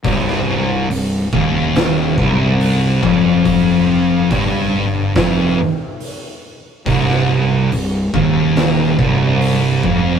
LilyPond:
<<
  \new Staff \with { instrumentName = "Distorted electric guitar" } { \clef bass \time 4/4 \key c \minor \tempo 4 = 70 c,4 c,8 ees,4 c,4 f,8~ | f,4 g,4 f,8 r4. | c,4 c,8 ees,4 c,4 f,8 | }
  \new Staff \with { instrumentName = "Fingered electric bass" } { \clef bass \time 4/4 \key c \minor c,,4 c,,8 ees,,4 c,,4 f,,8~ | f,,4 g,,4 f,,8 r4. | c,,4 c,,8 ees,,4 c,,4 f,,8 | }
  \new DrumStaff \with { instrumentName = "Drums" } \drummode { \time 4/4 <hho bd>16 sn8. hho8 bd8 <hho sn>8 bd8 hho8 bd8 | <hho bd>4 <hho bd>4 <hho bd sn>4 hho4 | <hho bd>16 sn8. hho8 bd8 <hho sn>8 bd8 hho8 bd8 | }
>>